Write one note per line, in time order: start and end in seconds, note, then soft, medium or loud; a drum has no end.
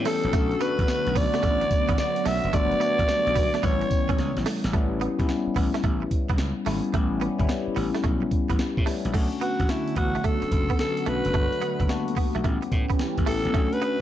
0.00 0.32 E3 medium
0.00 0.31 G3 medium
0.00 2.50 A3 medium
0.00 0.13 B3 medium
0.00 0.13 C#4 medium
0.00 0.32 C#4 medium
0.00 0.13 E4 medium
0.00 0.14 G4 medium
0.00 0.32 G4 medium
0.05 0.21 A3 medium
0.05 0.63 A4 loud
0.05 snare medium
0.05 open hi-hat medium
0.23 0.31 A#1 medium
0.23 closed hi-hat medium
0.33 0.53 B1 loud
0.33 2.51 D3 medium
0.33 3.60 F#3 medium
0.33 0.57 A3 medium
0.33 0.48 A3 medium
0.33 3.60 B3 medium
0.33 0.57 C#4 medium
0.33 0.57 D4 medium
0.33 3.60 F#4 loud
0.33 0.57 F#4 medium
0.33 kick loud
0.33 closed hi-hat medium
0.33 tambourine medium
0.51 closed hi-hat soft
0.60 1.51 A3 medium
0.60 0.76 B3 medium
0.60 1.51 B3 medium
0.60 1.51 D4 medium
0.60 1.51 F#4 medium
0.60 1.18 B4 loud
0.60 closed hi-hat medium
0.60 tambourine medium
0.79 0.85 A1 medium
0.79 muted clean electric guitar stroke soft
0.79 kick medium
0.79 closed hi-hat medium
0.88 muted clean electric guitar stroke soft
0.88 muted slap bass stroke soft
0.88 snare loud
0.88 closed hi-hat medium
0.88 tambourine loud
1.07 1.26 B1 medium
1.07 closed hi-hat medium
1.15 1.31 B3 medium
1.15 1.99 D5 loud
1.15 kick medium
1.15 open hi-hat medium
1.15 tambourine medium
1.34 1.42 A3 medium
1.34 snare medium
1.34 closed hi-hat medium
1.43 1.63 A1 medium
1.43 1.58 A3 medium
1.43 kick medium
1.43 closed hi-hat medium
1.43 tambourine medium
1.61 muted clean electric guitar stroke soft
1.61 closed hi-hat medium
1.71 kick medium
1.71 closed hi-hat medium
1.71 tambourine medium
1.89 1.96 A1 medium
1.89 1.96 B3 medium
1.89 kick loud
1.89 closed hi-hat medium
1.98 2.28 D5 medium
1.98 snare loud
1.98 closed hi-hat medium
1.98 tambourine loud
2.16 closed hi-hat medium
2.26 2.39 B1 medium
2.26 2.41 A3 medium
2.26 2.56 E5 loud
2.26 snare medium
2.26 open hi-hat medium
2.44 2.51 F#1 medium
2.44 closed hi-hat medium
2.53 2.73 G1 loud
2.53 3.63 D3 medium
2.53 3.62 G3 medium
2.53 2.77 A3 medium
2.53 2.68 A3 medium
2.53 2.77 B3 medium
2.53 2.77 D4 medium
2.53 2.77 F#4 medium
2.53 3.66 D5 loud
2.53 kick loud
2.53 closed hi-hat medium
2.53 tambourine medium
2.72 closed hi-hat soft
2.80 3.63 A3 medium
2.80 2.96 B3 medium
2.80 3.62 B3 medium
2.80 3.63 D4 medium
2.80 3.63 F#4 medium
2.80 closed hi-hat medium
2.80 tambourine medium
2.99 3.06 A1 medium
2.99 muted clean electric guitar stroke soft
2.99 kick medium
2.99 closed hi-hat medium
3.08 muted clean electric guitar stroke soft
3.08 snare loud
3.08 closed hi-hat medium
3.08 tambourine medium
3.27 3.46 B1 medium
3.27 closed hi-hat medium
3.35 3.51 B3 medium
3.35 kick medium
3.35 open hi-hat medium
3.35 tambourine medium
3.54 3.62 A3 medium
3.54 snare medium
3.54 closed hi-hat medium
3.63 3.83 A1 loud
3.63 4.72 C#3 medium
3.63 4.72 E3 medium
3.63 4.53 G3 medium
3.63 4.72 G3 medium
3.63 4.72 A3 medium
3.63 4.54 B3 medium
3.63 3.78 B3 medium
3.63 3.72 C4 medium
3.63 4.72 E4 medium
3.63 4.54 E4 medium
3.63 4.47 C#5 medium
3.63 kick medium
3.63 closed hi-hat medium
3.63 tambourine medium
3.70 4.57 C#4 medium
3.81 muted clean electric guitar stroke soft
3.81 closed hi-hat medium
3.91 kick medium
3.91 closed hi-hat medium
3.91 tambourine medium
4.09 4.16 A1 medium
4.09 4.17 C#4 medium
4.09 kick medium
4.09 closed hi-hat medium
4.18 4.31 C#2 loud
4.18 snare medium
4.18 closed hi-hat medium
4.37 4.43 A1 medium
4.37 snare medium
4.37 closed hi-hat medium
4.46 4.61 A3 medium
4.46 snare loud
4.46 open hi-hat loud
4.64 4.71 A1 medium
4.64 snare loud
4.64 closed hi-hat medium
4.73 5.06 A1 loud
4.73 5.08 G3 medium
4.73 4.89 A3 medium
4.73 5.08 B3 medium
4.73 5.09 C#4 medium
4.73 5.09 E4 loud
4.73 kick loud
4.73 closed hi-hat medium
5.01 5.16 B3 medium
5.01 closed hi-hat medium
5.19 5.26 B1 loud
5.19 6.05 G3 medium
5.19 6.06 B3 medium
5.19 6.06 C#4 medium
5.19 6.06 E4 medium
5.19 muted clean electric guitar stroke soft
5.19 kick medium
5.19 closed hi-hat medium
5.29 muted clean electric guitar stroke soft
5.29 snare loud
5.29 closed hi-hat medium
5.47 muted slap bass stroke soft
5.56 5.69 A1 medium
5.56 5.71 B3 medium
5.56 kick medium
5.56 open hi-hat medium
5.74 5.82 A3 medium
5.74 snare medium
5.74 closed hi-hat soft
5.84 6.03 A1 loud
5.84 5.99 A3 medium
5.84 kick medium
5.84 closed hi-hat medium
6.02 muted clean electric guitar stroke soft
6.11 kick medium
6.11 closed hi-hat medium
6.29 6.36 B1 medium
6.29 6.37 B3 medium
6.29 kick medium
6.29 closed hi-hat medium
6.38 6.52 C#2 medium
6.38 snare loud
6.38 closed hi-hat medium
6.66 6.79 G#1 medium
6.66 6.90 G3 medium
6.66 6.81 A3 medium
6.66 6.90 B3 medium
6.66 6.90 C#4 medium
6.66 6.90 E4 loud
6.66 snare medium
6.66 open hi-hat medium
6.84 closed hi-hat medium
6.93 7.26 A1 loud
6.93 7.28 G3 medium
6.93 7.09 A3 medium
6.93 7.29 B3 medium
6.93 7.29 C#4 medium
6.93 7.29 G4 loud
6.93 kick loud
6.93 closed hi-hat medium
7.21 7.36 B3 medium
7.21 closed hi-hat medium
7.39 7.46 G1 medium
7.39 8.26 G3 medium
7.39 8.26 B3 medium
7.39 8.26 C#4 medium
7.39 8.26 E4 loud
7.39 muted clean electric guitar stroke soft
7.39 kick medium
7.39 closed hi-hat medium
7.49 muted clean electric guitar stroke soft
7.49 snare loud
7.49 closed hi-hat medium
7.68 muted slap bass stroke soft
7.76 7.90 A1 loud
7.76 7.91 B3 medium
7.76 open hi-hat medium
7.95 8.02 A3 medium
7.95 snare medium
7.95 closed hi-hat medium
8.04 8.24 B1 medium
8.04 8.19 A3 medium
8.04 kick medium
8.04 closed hi-hat medium
8.22 muted clean electric guitar stroke soft
8.31 kick medium
8.31 closed hi-hat medium
8.50 8.56 A1 medium
8.50 8.57 B3 medium
8.50 kick medium
8.50 closed hi-hat medium
8.59 snare loud
8.59 closed hi-hat medium
8.77 8.84 A2 loud
8.77 kick medium
8.86 9.10 G3 medium
8.86 9.01 A3 medium
8.86 9.10 B3 medium
8.86 9.10 C#4 medium
8.86 9.11 E4 medium
8.86 snare medium
8.86 open hi-hat medium
9.05 9.11 A#1 medium
9.05 closed hi-hat medium
9.13 9.27 B1 loud
9.13 11.32 D3 medium
9.13 12.41 F#3 medium
9.13 9.61 A3 medium
9.13 9.29 A3 medium
9.13 11.32 A3 medium
9.13 12.41 B3 medium
9.13 9.61 C#4 medium
9.13 9.62 D4 medium
9.13 12.41 F#4 loud
9.13 9.62 F#4 loud
9.13 kick loud
9.13 closed hi-hat medium
9.13 crash medium
9.32 closed hi-hat soft
9.41 9.57 B3 medium
9.41 9.72 F#4 medium
9.41 closed hi-hat medium
9.60 9.66 A1 medium
9.60 muted clean electric guitar stroke soft
9.60 kick medium
9.60 closed hi-hat medium
9.68 10.59 A3 medium
9.68 10.59 C#4 medium
9.68 10.59 D4 medium
9.68 9.97 E4 medium
9.68 10.60 F#4 medium
9.68 muted clean electric guitar stroke soft
9.68 snare loud
9.68 closed hi-hat medium
9.88 closed hi-hat medium
9.96 10.16 A1 loud
9.96 10.12 B3 medium
9.96 10.26 F#4 medium
9.96 kick loud
9.96 closed hi-hat medium
10.15 10.23 A3 medium
10.15 closed hi-hat soft
10.24 10.39 A3 medium
10.24 10.79 A4 loud
10.24 kick medium
10.24 closed hi-hat medium
10.42 muted clean electric guitar stroke soft
10.42 muted slap bass stroke soft
10.42 closed hi-hat medium
10.51 10.71 F#1 medium
10.51 kick medium
10.51 closed hi-hat medium
10.70 10.78 B3 medium
10.70 kick medium
10.70 closed hi-hat medium
10.79 11.09 A4 loud
10.79 snare loud
10.79 closed hi-hat medium
10.97 closed hi-hat medium
11.06 11.20 B1 medium
11.06 11.30 A3 medium
11.06 11.22 A3 medium
11.06 11.30 C#4 medium
11.06 11.31 D4 medium
11.06 11.31 F#4 medium
11.06 12.17 B4 loud
11.06 closed hi-hat medium
11.25 11.32 F#1 medium
11.25 closed hi-hat medium
11.33 11.47 G1 loud
11.33 12.43 D3 medium
11.33 13.52 G3 medium
11.33 11.81 A3 medium
11.33 11.49 A3 medium
11.33 11.82 B3 medium
11.33 11.82 D4 medium
11.33 11.82 F#4 medium
11.33 kick loud
11.33 closed hi-hat medium
11.53 closed hi-hat soft
11.62 11.77 B3 medium
11.62 closed hi-hat medium
11.80 11.86 F#1 medium
11.80 muted clean electric guitar stroke soft
11.80 kick medium
11.80 closed hi-hat soft
11.89 12.44 A3 medium
11.89 11.98 A#3 medium
11.89 12.44 D4 medium
11.89 12.44 F#4 medium
11.89 muted clean electric guitar stroke soft
11.89 snare loud
11.89 closed hi-hat medium
11.95 12.42 B3 medium
12.08 closed hi-hat soft
12.16 12.32 B3 medium
12.16 muted slap bass stroke soft
12.16 kick medium
12.16 open hi-hat medium
12.35 12.42 B1 medium
12.35 12.43 A3 medium
12.35 closed hi-hat soft
12.44 12.57 A1 loud
12.44 13.53 E3 medium
12.44 14.01 A3 medium
12.44 12.59 A3 medium
12.44 13.14 B3 medium
12.44 13.53 C#4 medium
12.44 13.14 C#4 medium
12.44 13.14 E4 medium
12.44 13.53 G4 medium
12.44 13.15 G4 medium
12.44 kick medium
12.44 closed hi-hat medium
12.62 muted clean electric guitar stroke soft
12.62 closed hi-hat soft
12.72 12.85 A2 loud
12.72 kick medium
12.72 closed hi-hat medium
12.90 12.97 B3 medium
12.90 kick medium
12.90 closed hi-hat medium
12.99 snare loud
12.99 closed hi-hat medium
13.18 13.24 A1 medium
13.18 kick medium
13.18 closed hi-hat medium
13.26 13.40 A1 loud
13.26 13.42 A3 medium
13.26 13.50 B3 medium
13.26 13.51 C#4 medium
13.26 13.51 E4 medium
13.26 13.51 G4 medium
13.26 13.75 A4 loud
13.26 open hi-hat medium
13.45 13.52 A#1 medium
13.45 closed hi-hat medium
13.54 13.67 B1 loud
13.54 14.01 D3 medium
13.54 14.01 A3 medium
13.54 13.69 A3 medium
13.54 14.01 B3 medium
13.54 14.01 C#4 medium
13.54 14.01 D4 medium
13.54 14.01 F#4 medium
13.54 14.01 F#5 medium
13.54 kick loud
13.54 closed hi-hat medium
13.73 14.01 B4 loud
13.73 closed hi-hat soft
13.82 13.97 B3 medium
13.82 closed hi-hat medium